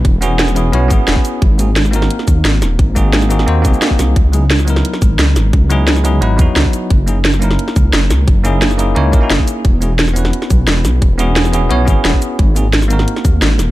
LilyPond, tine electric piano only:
\new Staff \with { instrumentName = "Tine electric piano" } { \time 4/4 \key cis \dorian \tempo 4 = 175 <b cis' e' fis' b'>8 <b cis' e' fis' gis'>4 <b cis' e' fis' gis'>8 <b cis' e' fis' cis''>8 <b cis' e' fis' gis'>4. | r8 <ais bis dis' fis' gis'>16 r8. <ais bis dis' fis' ais'>2~ <ais bis dis' fis' ais'>8~ | <ais bis dis' fis' ais'>8 <ais bis dis' fis' gis'>4 <ais bis dis' fis' gis'>8 <ais bis dis' fis' bis'>8 <ais bis dis' fis' gis'>4. | r8 <fis b dis' e' gis'>16 r8. <fis b dis' e' ais'>2~ <fis b dis' e' ais'>8~ |
<fis b dis' e' ais'>8 <fis b dis' e' gis'>4 <fis b dis' e' gis'>8 <fis b dis' e' b'>8 <fis b dis' e' fis'>4. | r8 <ais cis' dis' e' gis'>16 r8. <ais cis' dis' e' ais'>2~ <ais cis' dis' e' ais'>8~ | <ais cis' dis' e' ais'>8 <ais cis' dis' e' gis'>4 <ais cis' dis' e' gis'>8 <ais cis' dis' e' cis''>8 <ais cis' dis' e' ais'>16 <ais cis' dis' e' fis'>16 r16 <ais cis' dis' e' gis'>8. | r8 <b cis' e' fis' gis'>16 r8. <b cis' e' fis' b'>2~ <b cis' e' fis' b'>8~ |
<b cis' e' fis' b'>8 <b cis' e' fis' gis'>4 <b cis' e' fis' gis'>8 <b cis' e' fis' cis''>8 <b cis' e' fis' gis'>4. | r8 <ais bis dis' fis' gis'>16 r8. <ais bis dis' fis' ais'>2~ <ais bis dis' fis' ais'>8 | }